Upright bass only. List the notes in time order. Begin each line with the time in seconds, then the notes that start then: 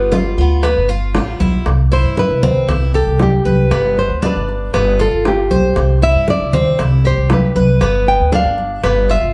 Already playing: G1
0.38 D2
0.76 G1
1.15 A1
1.40 B1
1.66 C2
2.04 G2
2.30 C2
2.68 C2
3.07 C2
3.45 C2
3.71 G1
4.10 D2
4.36 G1
4.74 G1
5.13 G1
5.51 B1
5.77 C2
6.15 G2
6.40 C2
6.79 C2
7.18 C2
7.55 C2
7.81 G1
8.20 D2
8.45 G1
8.84 G1
9.22 G1